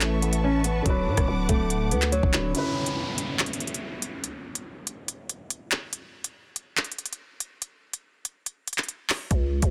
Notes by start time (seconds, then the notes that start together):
Already playing: A1 A3 E4 B4 C#5 E5 A5 C#6
0.01 clap, closed hi-hat
0.22 B3, closed hi-hat
0.33 closed hi-hat
0.44 C#4
0.64 B3, closed hi-hat
0.82 D1 D3 F#3 D4 F#5 D6, kick, closed hi-hat
0.87 F#4 B4
1.07 A2
1.17 D1, kick, cross-stick, closed hi-hat
1.28 D1
1.49 D1 A3, kick, closed hi-hat
1.70 closed hi-hat
1.91 D2 B3, closed hi-hat
2.02 clap, closed hi-hat
2.12 F#3, closed hi-hat
2.23 D1, kick
2.32 D1 D3 D4 F#4 B4, clap, closed hi-hat
2.51 C#3 C#4, closed hi-hat, downlifter
2.56 E4 B4
2.86 closed hi-hat
3.18 closed hi-hat
3.39 clap, closed hi-hat
3.46 closed hi-hat
3.53 closed hi-hat
3.60 closed hi-hat
3.67 closed hi-hat
3.74 closed hi-hat
4.02 closed hi-hat
4.24 closed hi-hat
4.55 closed hi-hat
4.87 closed hi-hat
5.08 closed hi-hat
5.29 closed hi-hat
5.50 closed hi-hat
5.71 clap, closed hi-hat
5.93 closed hi-hat
6.24 closed hi-hat
6.56 closed hi-hat
6.77 clap, closed hi-hat
6.84 closed hi-hat
6.92 closed hi-hat
6.99 closed hi-hat
7.06 closed hi-hat
7.13 closed hi-hat
7.40 closed hi-hat
7.62 closed hi-hat
7.93 closed hi-hat
8.25 closed hi-hat
8.46 closed hi-hat
8.68 closed hi-hat
8.73 closed hi-hat
8.78 clap, closed hi-hat
8.83 closed hi-hat
8.89 closed hi-hat
9.09 clap, open hi-hat
9.31 C#2, kick, closed hi-hat
9.62 C#2, kick, closed hi-hat